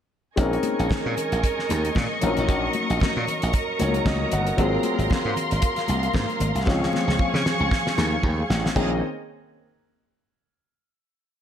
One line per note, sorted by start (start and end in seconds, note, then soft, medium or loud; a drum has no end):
0.36 0.56 A#1 loud
0.36 2.18 G#3 medium
0.36 2.18 C4 medium
0.36 2.19 C#4 medium
0.36 2.19 D#4 medium
0.36 2.20 A#4 medium
0.36 2.19 A#4 medium
0.36 4.54 D#5 medium
0.36 2.21 G#5 medium
0.36 4.54 C#6 medium
0.36 kick loud
0.36 closed hi-hat medium
0.36 muted conga soft
0.53 closed hi-hat soft
0.63 closed hi-hat medium
0.63 muted conga soft
0.63 high conga medium
0.79 0.87 A#1 medium
0.79 closed hi-hat soft
0.90 kick medium
0.90 snare loud
0.90 high conga medium
1.06 1.14 A#2 medium
1.17 closed hi-hat medium
1.17 low conga medium
1.32 1.40 A#1 medium
1.32 closed hi-hat soft
1.43 kick loud
1.43 closed hi-hat medium
1.59 snare soft
1.69 1.89 D#2 medium
1.69 closed hi-hat medium
1.69 high conga medium
1.85 closed hi-hat soft
1.95 2.06 A#2 medium
1.95 kick medium
1.95 snare medium
1.95 high conga medium
2.21 2.33 A#1 medium
2.21 2.29 F3 medium
2.21 3.76 A#3 medium
2.21 3.77 C#4 medium
2.21 3.77 D#4 medium
2.21 6.63 A#4 medium
2.21 3.77 A#4 medium
2.21 6.63 A#5 medium
2.21 closed hi-hat medium
2.21 high conga medium
2.21 low conga medium
2.27 3.78 F#3 medium
2.37 2.49 A1 medium
2.37 closed hi-hat soft
2.49 2.67 A#1 loud
2.49 kick loud
2.49 closed hi-hat medium
2.73 closed hi-hat medium
2.73 muted conga soft
2.73 high conga medium
2.90 2.98 A#1 loud
2.90 closed hi-hat soft
3.00 kick loud
3.00 snare loud
3.00 muted conga soft
3.00 high conga medium
3.17 3.24 A#2 loud
3.27 closed hi-hat medium
3.27 low conga medium
3.42 3.51 A#1 loud
3.42 closed hi-hat soft
3.53 kick loud
3.53 closed hi-hat medium
3.53 muted conga soft
3.79 3.99 C#2 medium
3.79 4.56 F#3 medium
3.79 4.56 A#3 soft
3.79 4.58 C#4 soft
3.79 4.58 D#4 soft
3.79 4.59 A#4 medium
3.79 4.04 C#5 medium
3.79 closed hi-hat medium
3.79 muted conga soft
3.79 high conga medium
3.94 closed hi-hat soft
4.06 4.24 C#2 medium
4.06 4.31 D#5 medium
4.06 kick loud
4.06 snare loud
4.06 muted conga soft
4.06 high conga medium
4.32 4.51 G1 medium
4.32 4.57 F#5 medium
4.32 closed hi-hat medium
4.32 muted conga soft
4.32 high conga medium
4.32 low conga medium
4.47 closed hi-hat soft
4.57 4.77 G#1 loud
4.57 6.62 F#3 medium
4.57 6.63 A#3 medium
4.57 6.63 C4 medium
4.57 6.64 F4 medium
4.57 6.64 G#4 medium
4.57 8.72 F5 medium
4.57 6.65 C6 medium
4.57 kick loud
4.57 closed hi-hat medium
4.83 closed hi-hat medium
4.83 muted conga soft
4.83 high conga medium
4.98 5.07 G#1 medium
4.98 closed hi-hat soft
5.10 kick loud
5.10 snare loud
5.10 muted conga soft
5.10 high conga medium
5.25 5.33 G#2 loud
5.36 closed hi-hat medium
5.36 low conga medium
5.51 5.60 G#1 medium
5.51 closed hi-hat medium
5.61 kick loud
5.61 closed hi-hat medium
5.61 muted conga soft
5.76 snare soft
5.76 closed hi-hat soft
5.88 6.07 C2 medium
5.88 closed hi-hat medium
5.88 muted conga soft
5.88 high conga medium
6.03 closed hi-hat soft
6.14 6.25 G#2 medium
6.14 kick medium
6.14 snare loud
6.14 muted conga soft
6.14 high conga medium
6.29 closed hi-hat soft
6.40 6.51 G#1 medium
6.40 closed hi-hat medium
6.40 muted conga soft
6.40 high conga medium
6.40 low conga medium
6.55 6.67 C2 medium
6.55 closed hi-hat soft
6.66 6.86 C#2 loud
6.66 8.72 F3 medium
6.66 8.72 G#3 medium
6.66 8.72 C4 medium
6.66 8.73 C#4 medium
6.66 8.74 G#4 medium
6.66 8.73 G#4 medium
6.66 8.73 G#5 medium
6.66 8.73 C#6 medium
6.66 kick loud
6.66 snare medium
6.66 muted conga soft
6.83 snare soft
6.93 snare medium
6.93 muted conga soft
6.93 high conga medium
7.08 7.16 C#2 medium
7.08 snare medium
7.19 muted slap bass stroke soft
7.19 kick medium
7.19 muted conga soft
7.19 high conga medium
7.34 7.42 C#3 loud
7.34 snare medium
7.46 snare medium
7.46 low conga medium
7.60 7.68 C#2 medium
7.60 high conga medium
7.71 kick loud
7.71 snare medium
7.87 snare medium
7.98 8.16 D#2 medium
7.98 snare medium
7.98 muted conga soft
7.98 high conga medium
8.23 8.42 D#2 medium
8.23 kick loud
8.23 muted conga soft
8.23 high conga medium
8.50 8.68 A1 medium
8.50 snare loud
8.50 high conga medium
8.50 low conga medium
8.66 snare medium
8.76 9.01 A#1 loud
8.76 9.00 D#3 medium
8.76 9.01 A#3 medium
8.76 9.01 C4 medium
8.76 9.01 C#4 medium
8.76 9.00 G#4 medium
8.76 9.01 G#4 medium
8.76 9.01 C5 medium
8.76 9.01 C#5 medium
8.76 9.01 D#5 medium
8.76 kick loud
8.76 crash medium
8.76 high conga medium